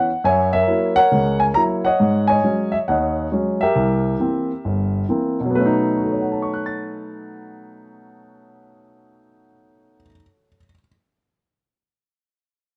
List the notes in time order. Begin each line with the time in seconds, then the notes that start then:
Already playing: F#5
0.24 F#2 C#5 E5 G#5
0.53 A#4 C#5 E5
0.68 F#3 A#3 E4
0.96 A#4 C#5 F#5
1.12 C#2 C#3
1.40 G#5
1.54 F#3 A#3 E4 A#5
1.85 C#5 D#5 F#5
2.00 G#2
2.28 C#5 D#5 G#5
2.44 F#3 G#3 C#4
2.72 E5
2.88 D#2 C#5 D#5 F#5
3.32 F#3 G#3 C#4
3.61 G4 A#4 E5
3.76 C2
4.20 E3 A#3 C4
4.65 G1
5.09 E3 A#3 C4
5.40 B2
5.45 F#3
5.51 B3
5.55 A3 B4
5.60 C#4
5.66 D#4
5.97 F#4
6.04 A4
6.12 C#5
6.21 F#5
6.31 A5
6.42 C#6
6.54 F#6
6.66 A6